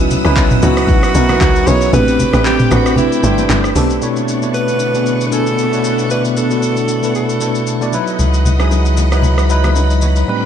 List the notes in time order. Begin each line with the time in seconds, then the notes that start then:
Already playing: C#2 F#3 B3 C#4 D#4 E4 F#4 B4 F#5 D#6 E6
0.11 low bongo, low conga, shaker
0.24 C#2 F#3 C#4 D#4 E4 B4, cross-stick, high bongo, shaker
0.37 kick, clap, high bongo, shaker
0.51 mid tom, shaker
0.62 C#2 F#3 C#4 D#4 E4 F#4 B4, low bongo, shaker
0.77 cross-stick, shaker
0.87 D#4 E4 F#4 B4, kick, low conga, shaker
1.03 cross-stick, shaker
1.14 B1 F#3 C#4 D#4 E4 A#4, shaker
1.29 D#4 E4 F#4 B4, cross-stick, low bongo, shaker
1.41 C#2, kick, clap, high bongo, shaker
1.56 shaker
1.66 B1 F#3 C#4 D#4 E4 F#4 G#4 B4 C#5, high bongo, low bongo, shaker
1.81 shaker
1.93 A1 A3 C4 D4 G4 B4 G5 B5 D6, low conga, shaker
2.08 shaker
2.19 low bongo, low conga, shaker
2.33 A1 A3 C4 D4 G4 B4, cross-stick, high bongo, shaker
2.46 G4, clap, high bongo, shaker
2.59 mid tom, shaker
2.71 A1 A3 C4 D4 F#4 G4 B4, cross-stick, low bongo, shaker
2.86 cross-stick, shaker
2.96 C4 D4 E4 G4 B4, low conga, shaker
3.12 shaker
3.23 G1 A3 C4 D4 G4 C5, shaker
3.38 C4 D4 G4 B4, low bongo, shaker
3.49 G1, clap, high bongo, shaker
3.64 cross-stick, shaker
3.75 B1 A3 C4 D4 G4 A4 B4, open hi-hat, high bongo, low bongo, shaker
3.90 shaker
4.02 B2 A3 B3 D4 E4 C#5 F#5 C#6, shaker
4.16 shaker
4.28 shaker
4.42 B2 A3 D4 E4 C#5, shaker
4.54 B4, shaker
4.68 shaker
4.79 shaker
4.94 B2 A3 D4 E4 G#4, shaker
5.06 shaker
5.21 shaker
5.27 B4
5.31 B2 A3 D4 E4 A4 G#5, shaker
5.46 shaker
5.58 shaker
5.72 B2 A3 D4 E4 C#5, shaker
5.84 shaker
5.99 shaker
6.10 B2 A3 D4 E4 B4 D5, shaker
6.25 shaker
6.37 A4, shaker
6.50 B2 A3 D4 E4 F#4, shaker
6.63 shaker
6.77 shaker
6.88 shaker
7.03 B2 A3 D4 E4 B4, shaker
7.15 A4, shaker
7.29 shaker
7.41 B2 A3 D4 E4 A4, shaker
7.55 shaker
7.67 shaker
7.81 B2 A3 D4 E4 D5, shaker
7.92 F#3 D#4 E4 B4 D#5 F#5 B5, shaker
8.07 shaker
8.19 C#2, low conga, shaker
8.34 shaker
8.45 low conga, shaker
8.59 F#3 D#4 E4 G#4, cross-stick, high bongo, shaker
8.72 high bongo, shaker
8.86 shaker
8.97 low bongo, shaker
9.11 F#3 D#4 E4 B4, cross-stick, shaker
9.22 low conga, shaker
9.38 cross-stick, shaker
9.49 F#3 D#4 E4 B4, shaker
9.64 cross-stick, low bongo, shaker
9.76 high bongo, shaker
9.90 F#4 D#5, shaker
10.02 E4 C#5, low bongo, shaker
10.16 D#4 B4, shaker
10.28 A2 G3 A3 C4 D4 B4 G5 D6